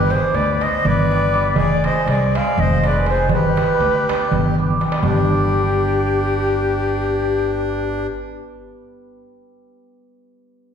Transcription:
Already playing: G1 G4 B4
0.09 G3 B3 D4 G4 G#4 C5, darbuka tek
0.23 darbuka tek
0.34 D2 B4 D5, darbuka tek
0.60 G3 B3 D4 G4 C5 D#5, darbuka tek
0.85 G1 B4 D5, darbuka dum
1.10 G3 B3 D4 G4, darbuka tek
1.23 darbuka tek
1.33 G3 B3 D4 G4, darbuka tek
1.56 F1 G#4 D5, darbuka dum
1.83 G#3 C4 F4 G#4 C5 D#5, darbuka tek
1.96 darbuka tek
2.06 C2 G#4 D5, darbuka tek
2.35 G#3 C4 F4 G#4 D5 F5, darbuka tek
2.57 F1 C5 D#5, darbuka dum
2.84 G#3 C4 F4 G#4 D5, darbuka tek
2.88 B4
2.96 darbuka tek
3.06 G#3 C4 F4 G#4 C5, darbuka tek
3.12 G#4
3.29 G1, darbuka dum
3.33 G4 B4
3.56 G3 B3 D4 G4, darbuka tek
3.80 D2, darbuka tek
3.96 darbuka tek
4.08 G3 B3 D4 G4, darbuka tek
4.31 G1, darbuka dum
4.45 darbuka tek
4.58 G3 B3 D4 G4, darbuka dum
4.70 darbuka dum
4.79 G3 B3 D4 G4, darbuka tek
4.92 darbuka tek
4.98 G3 B3 G4
5.03 G1 D4 G4, darbuka dum

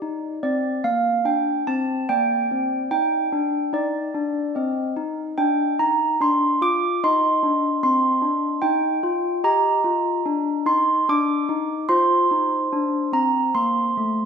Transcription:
Already playing: D5
0.02 D#4
0.43 C4 D5
0.84 A#3 F5
1.25 D4 G5
1.67 C4 A5
2.09 A#3 D5 G5
2.51 C4
2.91 D#4 G5
3.32 D4
3.73 D#4 D5
4.15 D4
4.55 C4 D#5
4.97 D#4
5.38 D4 G5
5.79 D#4 A#5
6.21 D4 C6
6.62 F4 D6
7.04 D#4 D#5 C6
7.43 D4
7.83 C4 C6
8.22 D4
8.62 D#4 G5
9.03 F4
9.44 G4 D#5 A#5
9.84 F4
10.26 D4
10.66 D#4 C6
11.09 D4 D6
11.49 D#4
11.89 F4 C5 C6
12.31 D#4
12.73 D4
13.13 C4 A#5
13.55 A#3 C6
13.97 A3

